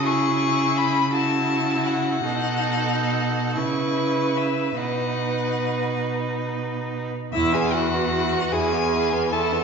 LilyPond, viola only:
\new Staff \with { instrumentName = "Viola" } { \time 6/8 \key e \major \tempo 4. = 50 e'4. e'4. | dis'4. e'4. | dis'2~ dis'8. r16 | e'16 gis'16 fis'4 gis'4 a'8 | }